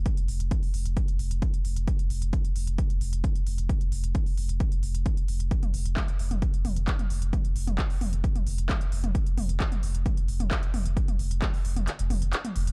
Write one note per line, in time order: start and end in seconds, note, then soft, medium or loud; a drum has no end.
0.06 kick loud
0.06 closed hi-hat medium
0.17 0.28 F1 medium
0.17 closed hi-hat medium
0.28 0.40 F1 loud
0.28 open hi-hat loud
0.40 0.51 F1 medium
0.40 closed hi-hat medium
0.51 kick loud
0.51 closed hi-hat medium
0.63 open hi-hat medium
0.74 0.85 F1 loud
0.74 open hi-hat loud
0.86 0.96 F1 medium
0.86 closed hi-hat medium
0.97 kick loud
0.97 closed hi-hat medium
1.08 1.19 F1 medium
1.08 closed hi-hat medium
1.19 1.30 F1 loud
1.19 open hi-hat loud
1.31 1.42 F1 medium
1.31 closed hi-hat medium
1.42 kick loud
1.42 closed hi-hat medium
1.54 closed hi-hat medium
1.65 1.76 F1 loud
1.65 open hi-hat loud
1.76 1.87 F1 medium
1.76 closed hi-hat medium
1.88 kick loud
1.88 closed hi-hat medium
1.99 2.10 F1 medium
1.99 closed hi-hat medium
2.10 2.21 F1 loud
2.10 open hi-hat loud
2.22 2.33 F1 medium
2.22 closed hi-hat medium
2.33 kick loud
2.33 closed hi-hat medium
2.45 closed hi-hat medium
2.56 2.67 F1 loud
2.56 open hi-hat loud
2.67 2.78 F1 medium
2.67 closed hi-hat medium
2.78 kick loud
2.78 closed hi-hat medium
2.90 3.01 F1 medium
2.90 closed hi-hat medium
3.01 3.12 F1 loud
3.01 open hi-hat loud
3.13 3.24 F1 medium
3.13 closed hi-hat medium
3.24 kick loud
3.24 closed hi-hat medium
3.36 closed hi-hat medium
3.47 3.58 F1 loud
3.47 open hi-hat loud
3.58 3.69 F1 medium
3.58 closed hi-hat medium
3.69 kick loud
3.69 closed hi-hat medium
3.81 3.91 F1 medium
3.81 closed hi-hat medium
3.92 4.03 F1 loud
3.92 open hi-hat loud
4.04 4.15 F1 medium
4.04 closed hi-hat medium
4.15 kick loud
4.15 closed hi-hat medium
4.26 open hi-hat medium
4.38 4.49 F1 loud
4.38 open hi-hat loud
4.49 4.60 F1 medium
4.49 closed hi-hat medium
4.60 kick loud
4.60 closed hi-hat medium
4.72 4.82 F1 medium
4.72 closed hi-hat medium
4.83 4.94 F1 loud
4.83 open hi-hat loud
4.95 5.06 F1 medium
4.95 closed hi-hat medium
5.06 kick loud
5.06 closed hi-hat medium
5.17 closed hi-hat medium
5.28 5.40 F1 loud
5.28 open hi-hat loud
5.40 5.51 F1 medium
5.40 closed hi-hat medium
5.51 kick loud
5.51 closed hi-hat medium
5.63 5.73 F1 medium
5.63 closed hi-hat soft
5.63 mid tom medium
5.74 5.85 F1 loud
5.74 open hi-hat loud
5.86 5.96 F1 medium
5.86 closed hi-hat medium
5.97 kick loud
5.97 clap loud
5.97 closed hi-hat medium
5.97 mid tom medium
6.08 closed hi-hat soft
6.19 6.30 F1 loud
6.19 open hi-hat loud
6.31 6.42 F1 medium
6.31 closed hi-hat soft
6.31 mid tom medium
6.42 kick loud
6.42 closed hi-hat medium
6.54 6.64 F1 medium
6.54 closed hi-hat soft
6.65 6.76 F1 loud
6.65 open hi-hat loud
6.65 mid tom medium
6.76 6.87 F1 medium
6.76 closed hi-hat medium
6.88 kick loud
6.88 clap loud
6.88 closed hi-hat medium
6.99 closed hi-hat soft
6.99 mid tom medium
7.10 7.21 F1 loud
7.10 open hi-hat loud
7.22 7.33 F1 medium
7.22 closed hi-hat soft
7.33 kick loud
7.33 closed hi-hat medium
7.33 mid tom medium
7.45 7.55 F1 medium
7.45 closed hi-hat soft
7.56 7.67 F1 loud
7.56 open hi-hat loud
7.67 7.78 F1 medium
7.67 closed hi-hat soft
7.67 mid tom medium
7.78 kick loud
7.78 clap loud
7.78 closed hi-hat medium
7.90 open hi-hat medium
8.01 8.12 F1 loud
8.01 open hi-hat loud
8.01 mid tom medium
8.13 8.24 F1 medium
8.13 closed hi-hat soft
8.24 kick loud
8.24 closed hi-hat medium
8.36 8.46 F1 medium
8.36 closed hi-hat soft
8.36 mid tom medium
8.47 8.58 F1 loud
8.47 open hi-hat loud
8.58 8.69 F1 medium
8.58 closed hi-hat medium
8.69 kick loud
8.69 clap loud
8.69 closed hi-hat medium
8.69 mid tom medium
8.81 closed hi-hat medium
8.92 9.03 F1 loud
8.92 open hi-hat loud
9.04 9.15 F1 medium
9.04 closed hi-hat soft
9.04 mid tom medium
9.15 kick loud
9.15 closed hi-hat medium
9.27 9.37 F1 medium
9.27 closed hi-hat medium
9.38 9.49 F1 loud
9.38 open hi-hat loud
9.38 mid tom medium
9.49 9.60 F1 medium
9.49 closed hi-hat medium
9.60 kick loud
9.60 clap loud
9.60 closed hi-hat medium
9.72 closed hi-hat medium
9.72 mid tom medium
9.83 9.94 F1 loud
9.83 open hi-hat loud
9.95 10.05 F1 medium
9.95 closed hi-hat medium
10.06 kick loud
10.06 closed hi-hat medium
10.06 mid tom medium
10.17 10.28 F1 medium
10.17 closed hi-hat medium
10.28 10.40 F1 loud
10.28 open hi-hat loud
10.40 10.51 F1 medium
10.40 closed hi-hat medium
10.40 mid tom medium
10.51 kick loud
10.51 clap loud
10.51 closed hi-hat medium
10.63 closed hi-hat medium
10.74 10.85 F1 loud
10.74 open hi-hat loud
10.74 mid tom medium
10.86 10.96 F1 medium
10.86 closed hi-hat medium
10.97 kick loud
10.97 closed hi-hat medium
11.08 11.19 F1 medium
11.08 closed hi-hat medium
11.08 mid tom medium
11.19 11.30 F1 loud
11.19 open hi-hat loud
11.31 11.42 F1 medium
11.31 closed hi-hat medium
11.42 kick loud
11.42 clap loud
11.42 closed hi-hat medium
11.42 mid tom medium
11.54 open hi-hat medium
11.65 11.76 F1 loud
11.65 open hi-hat loud
11.76 11.87 F1 medium
11.76 closed hi-hat medium
11.76 mid tom medium
11.88 clap medium
11.88 closed hi-hat medium
11.99 12.10 F1 medium
11.99 closed hi-hat medium
12.10 12.21 F1 loud
12.10 open hi-hat loud
12.10 mid tom medium
12.22 12.33 F1 medium
12.22 closed hi-hat medium
12.33 clap loud
12.33 closed hi-hat medium
12.45 closed hi-hat medium
12.45 mid tom medium
12.56 12.67 F1 loud
12.56 open hi-hat loud
12.67 12.72 F1 medium
12.67 closed hi-hat medium